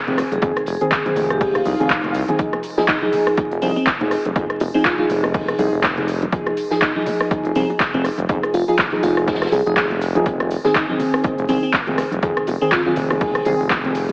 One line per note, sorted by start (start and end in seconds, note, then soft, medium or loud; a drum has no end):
0.07 0.22 F1 loud
0.07 0.17 D#3 medium
0.07 0.17 C4 medium
0.07 0.17 G#4 medium
0.07 closed hi-hat soft
0.07 low conga medium
0.18 cross-stick medium
0.18 closed hi-hat medium
0.18 open hi-hat loud
0.18 high bongo medium
0.18 cabasa medium
0.32 0.39 F1 medium
0.32 0.61 G#4 medium
0.32 closed hi-hat medium
0.32 high conga medium
0.32 cabasa soft
0.42 0.51 F2 loud
0.42 0.62 D#3 medium
0.42 0.62 C4 medium
0.42 0.62 G#4 medium
0.42 kick loud
0.42 closed hi-hat medium
0.42 high bongo medium
0.42 cabasa soft
0.57 cross-stick medium
0.57 closed hi-hat soft
0.57 cabasa soft
0.66 0.76 F1 medium
0.66 0.87 G#4 medium
0.66 closed hi-hat medium
0.66 open hi-hat loud
0.66 cabasa medium
0.81 1.02 D#3 medium
0.81 1.02 C4 medium
0.81 1.02 G#4 loud
0.81 closed hi-hat soft
0.81 high bongo medium
0.81 cabasa soft
0.91 1.22 G#4 medium
0.91 kick loud
0.91 snare loud
0.91 clap loud
0.91 closed hi-hat loud
0.91 closed hi-hat medium
0.91 cabasa soft
1.06 1.38 D#3 medium
1.06 1.38 C4 medium
1.06 1.38 G#4 medium
1.06 closed hi-hat soft
1.06 high bongo medium
1.06 high conga medium
1.06 cabasa soft
1.16 1.59 F1 medium
1.16 closed hi-hat medium
1.16 open hi-hat loud
1.16 low conga loud
1.16 cabasa medium
1.30 1.59 G4 medium
1.30 cross-stick medium
1.30 closed hi-hat soft
1.30 cabasa soft
1.41 1.60 D#3 medium
1.41 1.60 C4 medium
1.41 1.60 G#4 medium
1.41 kick loud
1.41 closed hi-hat medium
1.41 open hi-hat medium
1.41 swell medium
1.41 high bongo medium
1.41 cabasa soft
1.55 cross-stick medium
1.55 closed hi-hat medium
1.55 low conga medium
1.55 cabasa soft
1.65 1.74 C2 medium
1.65 2.31 D#4 medium
1.65 open hi-hat loud
1.65 high bongo medium
1.65 high conga medium
1.65 cabasa medium
1.79 2.14 F1 loud
1.79 1.89 D#3 medium
1.79 1.89 C4 medium
1.79 1.90 G#4 medium
1.79 cabasa soft
1.90 kick loud
1.90 clap loud
1.90 closed hi-hat medium
1.90 cabasa soft
2.04 closed hi-hat soft
2.04 high bongo medium
2.04 low conga medium
2.14 2.23 C2 loud
2.14 closed hi-hat medium
2.14 open hi-hat loud
2.14 cabasa medium
2.28 2.37 D#3 medium
2.28 2.37 C4 medium
2.28 2.37 G#4 loud
2.28 closed hi-hat medium
2.28 high bongo medium
2.28 high conga medium
2.28 cabasa soft
2.39 2.59 F3 medium
2.39 2.59 D#4 medium
2.39 kick loud
2.39 closed hi-hat medium
2.39 cabasa soft
2.53 cross-stick medium
2.53 closed hi-hat soft
2.53 high bongo medium
2.63 closed hi-hat medium
2.63 open hi-hat loud
2.63 cabasa medium
2.77 2.99 F3 medium
2.77 2.99 D#4 medium
2.77 2.86 G#4 medium
2.77 2.99 G#4 medium
2.77 snare soft
2.77 high bongo medium
2.77 cabasa soft
2.88 2.97 D#4 medium
2.88 kick loud
2.88 snare loud
2.88 clap loud
2.88 closed hi-hat medium
2.88 cabasa soft
3.02 3.35 F3 medium
3.02 3.09 D#4 medium
3.02 3.35 D#4 medium
3.02 3.35 G#4 medium
3.02 high conga loud
3.12 closed hi-hat medium
3.12 open hi-hat loud
3.12 high bongo medium
3.12 low conga medium
3.12 cabasa medium
3.27 cross-stick medium
3.27 cabasa soft
3.37 3.57 F3 medium
3.37 3.57 D#4 medium
3.37 3.57 G#4 medium
3.37 kick loud
3.37 closed hi-hat medium
3.37 high bongo medium
3.37 cabasa soft
3.51 3.58 F1 loud
3.51 closed hi-hat medium
3.51 cabasa soft
3.62 3.71 C2 medium
3.62 3.76 F3 loud
3.62 3.73 C4 medium
3.62 3.76 D#4 medium
3.62 3.76 G#4 loud
3.62 closed hi-hat medium
3.62 open hi-hat loud
3.62 high conga medium
3.62 cabasa medium
3.76 3.89 C4 medium
3.76 high bongo medium
3.76 cabasa soft
3.86 kick loud
3.86 snare loud
3.86 clap loud
3.86 closed hi-hat medium
3.86 cabasa soft
4.01 4.15 F1 medium
4.01 4.11 F3 medium
4.01 4.11 D#4 medium
4.01 4.11 G#4 medium
4.01 closed hi-hat soft
4.01 high bongo medium
4.01 low conga medium
4.11 cross-stick medium
4.11 closed hi-hat medium
4.11 open hi-hat loud
4.11 cabasa medium
4.25 4.32 F1 medium
4.25 closed hi-hat medium
4.25 high conga medium
4.25 cabasa soft
4.36 4.45 F2 loud
4.36 4.56 F3 medium
4.36 4.56 D#4 medium
4.36 4.56 G#4 medium
4.36 kick loud
4.36 closed hi-hat medium
4.36 high bongo medium
4.36 cabasa soft
4.50 cross-stick medium
4.50 closed hi-hat soft
4.60 4.69 F1 medium
4.60 closed hi-hat medium
4.60 open hi-hat loud
4.60 high bongo medium
4.60 cabasa medium
4.74 4.96 F3 medium
4.74 4.83 C4 medium
4.74 4.96 D#4 medium
4.74 4.96 G#4 loud
4.74 cabasa soft
4.85 4.94 F4 medium
4.85 kick loud
4.85 snare loud
4.85 clap loud
4.85 closed hi-hat medium
4.85 cabasa soft
4.98 5.32 F3 medium
4.98 5.32 D#4 medium
4.98 5.06 F4 medium
4.98 5.32 G#4 medium
4.98 high bongo medium
4.98 high conga medium
5.09 5.53 F1 medium
5.09 closed hi-hat medium
5.09 open hi-hat loud
5.09 low conga medium
5.09 cabasa medium
5.23 cross-stick medium
5.23 high bongo medium
5.23 cabasa soft
5.34 5.54 F3 medium
5.34 5.54 D#4 medium
5.34 5.54 G#4 medium
5.34 kick loud
5.34 closed hi-hat medium
5.34 open hi-hat medium
5.34 cabasa soft
5.48 cross-stick medium
5.48 closed hi-hat medium
5.48 cabasa soft
5.58 5.68 C2 medium
5.58 5.72 F3 loud
5.58 5.72 D#4 medium
5.58 5.72 G#4 loud
5.58 closed hi-hat medium
5.58 open hi-hat loud
5.58 high bongo soft
5.58 high conga medium
5.58 cabasa medium
5.73 6.26 F1 medium
5.73 cabasa soft
5.83 kick loud
5.83 snare loud
5.83 clap loud
5.83 closed hi-hat medium
5.83 high bongo medium
5.83 cabasa soft
5.97 6.07 F3 medium
5.97 6.08 D#4 medium
5.97 6.08 G#4 medium
5.97 closed hi-hat soft
5.97 low conga medium
6.08 closed hi-hat medium
6.08 open hi-hat loud
6.08 cabasa medium
6.22 closed hi-hat medium
6.22 high bongo soft
6.22 high conga medium
6.22 cabasa soft
6.32 6.52 F3 medium
6.32 6.52 D#4 medium
6.32 6.52 G#4 medium
6.32 kick loud
6.32 closed hi-hat medium
6.32 cabasa soft
6.46 cross-stick medium
6.46 closed hi-hat soft
6.46 high bongo medium
6.57 closed hi-hat medium
6.57 open hi-hat loud
6.57 cabasa medium
6.70 6.92 F3 medium
6.70 6.92 D#4 medium
6.70 6.80 G#4 medium
6.70 6.92 G#4 medium
6.70 snare soft
6.70 cabasa soft
6.82 6.91 D#4 medium
6.82 kick loud
6.82 snare loud
6.82 clap loud
6.82 closed hi-hat medium
6.82 high bongo medium
6.82 cabasa soft
6.96 7.28 F3 medium
6.96 7.28 D#4 medium
6.96 7.03 D#4 medium
6.96 7.28 G#4 loud
6.96 high conga loud
7.06 closed hi-hat medium
7.06 open hi-hat loud
7.06 high bongo medium
7.06 low conga loud
7.06 cabasa medium
7.20 cross-stick medium
7.20 cabasa soft
7.31 7.51 F3 medium
7.31 7.51 D#4 medium
7.31 7.51 G#4 medium
7.31 kick loud
7.31 closed hi-hat loud
7.31 closed hi-hat medium
7.31 cabasa soft
7.45 7.52 F1 loud
7.45 closed hi-hat medium
7.45 high bongo medium
7.45 cabasa soft
7.55 7.64 C2 medium
7.55 7.69 F3 loud
7.55 7.67 C4 medium
7.55 7.69 D#4 medium
7.55 7.69 G#4 loud
7.55 closed hi-hat medium
7.55 open hi-hat loud
7.55 high conga medium
7.55 cabasa medium
7.70 high bongo medium
7.70 cabasa soft
7.79 kick loud
7.79 snare loud
7.79 clap loud
7.79 closed hi-hat loud
7.79 closed hi-hat medium
7.79 cabasa soft
7.94 8.09 F1 loud
7.94 8.04 F3 medium
7.94 8.07 C4 medium
7.94 8.04 D#4 medium
7.94 8.04 G#4 medium
7.94 closed hi-hat soft
7.94 low conga medium
8.05 cross-stick medium
8.05 closed hi-hat medium
8.05 open hi-hat loud
8.05 high bongo soft
8.05 cabasa medium
8.18 8.25 F1 medium
8.18 closed hi-hat medium
8.18 high conga medium
8.18 cabasa soft
8.29 8.38 F2 loud
8.29 8.49 F3 medium
8.29 8.49 D#4 medium
8.29 8.49 G#4 medium
8.29 kick loud
8.29 closed hi-hat medium
8.29 high bongo medium
8.29 cabasa soft
8.43 cross-stick medium
8.43 closed hi-hat soft
8.43 cabasa soft
8.54 8.63 F1 medium
8.54 8.63 F4 medium
8.54 closed hi-hat medium
8.54 open hi-hat loud
8.54 cabasa medium
8.68 8.89 F3 medium
8.68 8.89 D#4 medium
8.68 8.75 F4 medium
8.68 8.89 G#4 loud
8.68 high bongo soft
8.68 cabasa soft
8.78 kick loud
8.78 snare loud
8.78 clap loud
8.78 closed hi-hat medium
8.78 cabasa soft
8.92 9.25 F3 medium
8.92 9.25 D#4 medium
8.92 9.25 G#4 loud
8.92 high bongo medium
8.92 high conga loud
9.03 9.46 F1 medium
9.03 9.19 F4 medium
9.03 closed hi-hat medium
9.03 open hi-hat loud
9.03 low conga medium
9.03 cabasa medium
9.17 cross-stick medium
9.17 cabasa soft
9.27 9.47 F3 medium
9.27 9.47 D#4 medium
9.27 9.47 G#4 medium
9.27 kick loud
9.27 snare medium
9.27 closed hi-hat medium
9.27 high bongo soft
9.27 cabasa soft
9.35 snare medium
9.35 closed hi-hat medium
9.41 cross-stick medium
9.41 snare medium
9.41 closed hi-hat medium
9.41 closed hi-hat soft
9.41 cabasa soft
9.46 snare medium
9.46 closed hi-hat medium
9.52 9.61 C2 medium
9.52 9.64 G#4 medium
9.52 closed hi-hat medium
9.52 open hi-hat loud
9.52 high bongo medium
9.52 high conga medium
9.52 cabasa medium
9.66 10.01 F1 medium
9.66 9.76 F3 medium
9.66 9.76 D#4 medium
9.66 9.73 G#4 medium
9.66 9.76 G#4 medium
9.66 closed hi-hat soft
9.66 cabasa soft
9.77 9.86 G#4 medium
9.77 kick loud
9.77 snare loud
9.77 clap loud
9.77 closed hi-hat medium
9.77 cabasa soft
9.91 closed hi-hat soft
9.91 high bongo medium
9.91 low conga medium
10.01 10.56 F1 medium
10.01 closed hi-hat medium
10.01 open hi-hat loud
10.01 cabasa medium
10.15 10.23 F3 medium
10.15 10.23 D#4 medium
10.15 10.24 G#4 loud
10.15 closed hi-hat medium
10.15 high bongo medium
10.15 high conga medium
10.15 cabasa soft
10.26 10.46 D#3 medium
10.26 10.46 C4 medium
10.26 10.46 G#4 medium
10.26 kick loud
10.26 closed hi-hat loud
10.26 closed hi-hat medium
10.26 cabasa soft
10.40 cross-stick medium
10.40 closed hi-hat soft
10.40 high bongo medium
10.51 closed hi-hat medium
10.51 open hi-hat loud
10.51 cabasa medium
10.64 10.86 D#3 medium
10.64 10.86 C4 medium
10.64 10.73 G#4 medium
10.64 10.86 G#4 loud
10.64 snare soft
10.64 high bongo medium
10.64 cabasa soft
10.75 10.84 D#4 medium
10.75 kick loud
10.75 snare loud
10.75 clap loud
10.75 closed hi-hat medium
10.75 cabasa soft
10.89 11.22 D#3 medium
10.89 11.22 C4 medium
10.89 10.96 D#4 medium
10.89 11.22 G#4 loud
10.89 high conga loud
10.99 closed hi-hat medium
10.99 open hi-hat loud
10.99 high bongo medium
10.99 low conga medium
10.99 cabasa medium
11.14 cross-stick medium
11.14 cabasa soft
11.24 11.44 D#3 medium
11.24 11.44 C4 medium
11.24 11.44 G#4 medium
11.24 kick loud
11.24 closed hi-hat loud
11.24 closed hi-hat medium
11.24 high bongo medium
11.24 cabasa soft
11.38 11.45 F1 loud
11.38 closed hi-hat medium
11.38 cabasa soft
11.49 11.58 C2 medium
11.49 11.62 D#3 loud
11.49 11.60 C4 loud
11.49 11.62 C4 medium
11.49 11.62 G#4 loud
11.49 closed hi-hat medium
11.49 open hi-hat loud
11.49 high conga medium
11.49 cabasa medium
11.63 11.76 C4 medium
11.63 high bongo soft
11.63 cabasa soft
11.73 kick loud
11.73 snare loud
11.73 clap loud
11.73 closed hi-hat medium
11.73 cabasa soft
11.87 12.02 F1 loud
11.87 11.98 D#3 medium
11.87 11.98 C4 medium
11.87 11.98 G#4 medium
11.87 closed hi-hat soft
11.87 high bongo medium
11.87 low conga medium
11.98 cross-stick medium
11.98 closed hi-hat medium
11.98 open hi-hat loud
11.98 cabasa medium
12.11 12.19 F1 medium
12.11 closed hi-hat medium
12.11 high conga medium
12.11 cabasa soft
12.22 12.32 F2 loud
12.22 12.42 D#3 medium
12.22 12.42 C4 medium
12.22 12.42 G#4 medium
12.22 kick loud
12.22 closed hi-hat medium
12.22 high bongo soft
12.22 cabasa soft
12.37 cross-stick medium
12.37 closed hi-hat soft
12.47 12.56 F1 medium
12.47 closed hi-hat medium
12.47 open hi-hat loud
12.47 high bongo medium
12.47 cabasa medium
12.61 12.83 D#3 medium
12.61 12.70 C4 medium
12.61 12.83 C4 medium
12.61 12.83 G#4 loud
12.61 cabasa soft
12.72 12.81 F4 medium
12.72 kick loud
12.72 snare loud
12.72 clap loud
12.72 closed hi-hat medium
12.72 cabasa soft
12.86 13.18 D#3 medium
12.86 13.19 C4 medium
12.86 12.93 F4 medium
12.86 13.19 G#4 medium
12.86 high bongo medium
12.86 high conga medium
12.96 13.40 F1 medium
12.96 closed hi-hat medium
12.96 open hi-hat loud
12.96 low conga medium
12.96 cabasa medium
13.10 cross-stick medium
13.10 high bongo medium
13.10 cabasa soft
13.21 13.41 D#3 medium
13.21 13.41 C4 medium
13.21 13.41 G#4 medium
13.21 kick loud
13.21 closed hi-hat medium
13.21 open hi-hat medium
13.21 cabasa soft
13.35 cross-stick medium
13.35 closed hi-hat medium
13.35 cabasa soft
13.45 13.55 C2 medium
13.45 13.59 D#3 loud
13.45 13.59 C4 medium
13.45 13.59 G#4 loud
13.45 closed hi-hat medium
13.45 open hi-hat loud
13.45 high bongo medium
13.45 high conga medium
13.45 cabasa medium
13.60 14.12 F1 medium
13.60 cabasa soft
13.70 kick loud
13.70 snare loud
13.70 clap loud
13.70 closed hi-hat medium
13.70 high bongo medium
13.70 cabasa soft
13.84 13.94 D#3 medium
13.84 13.94 C4 medium
13.84 13.94 G#4 medium
13.84 closed hi-hat soft
13.84 low conga medium
13.95 closed hi-hat medium
13.95 open hi-hat loud
13.95 cabasa medium
14.09 closed hi-hat medium
14.09 high conga medium